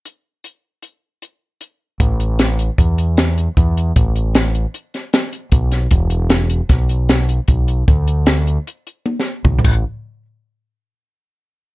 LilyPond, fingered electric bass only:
\new Staff \with { instrumentName = "Fingered electric bass" } { \clef bass \time 5/4 \key e \mixolydian \tempo 4 = 153 r1 r4 | a,,2 e,2 e,4 | a,,2 r2 b,,4 | e,,2 b,,2 b,,4 |
d,2 r2 b,,8 a,,8 | r1 r4 | }